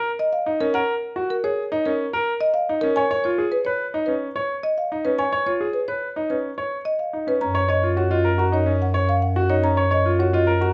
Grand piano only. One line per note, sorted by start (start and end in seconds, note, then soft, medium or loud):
0.46 0.65 D#4 medium
0.60 0.79 C#4 medium
0.75 0.93 A#4 medium
1.16 1.34 F#4 medium
1.44 1.62 G#4 medium
1.72 1.90 D#4 medium
1.86 2.04 C#4 medium
2.13 2.32 A#4 medium
2.69 2.87 D#4 medium
2.83 3.01 C#4 medium
2.97 3.09 C#5 medium
3.11 3.29 C#5 medium
3.25 3.43 F4 medium
3.38 3.57 G#4 medium
3.66 3.84 B4 medium
3.94 4.12 D#4 medium
4.08 4.26 C#4 medium
4.36 4.54 C#5 medium
4.92 5.10 D#4 medium
5.05 5.23 C#4 medium
5.19 5.31 C#5 medium
5.33 5.51 C#5 medium
5.46 5.65 F4 soft
5.61 5.79 G#4 soft
5.88 6.07 B4 soft
6.16 6.34 D#4 medium
6.30 6.48 C#4 soft
6.58 6.76 C#5 medium
7.13 7.32 D#4 soft
7.27 7.40 C#4 medium
7.41 7.59 C#4 medium
7.55 7.67 C#5 medium
7.69 7.87 C#5 medium
7.83 8.01 F4 medium
7.97 8.15 F#4 medium
8.11 8.29 F4 medium
8.25 8.43 A#4 medium
8.38 8.56 F#4 medium
8.52 8.71 D#4 medium
8.66 8.84 C#4 medium
8.94 9.12 C#5 medium
9.36 9.54 F#4 medium
9.50 9.68 D#4 medium
9.63 9.82 C#4 medium
9.77 9.89 C#5 medium
9.91 10.09 C#5 medium
10.06 10.23 F4 medium
10.19 10.37 F#4 medium
10.33 10.51 F4 medium
10.47 10.65 A#4 medium
10.61 10.73 F#4 medium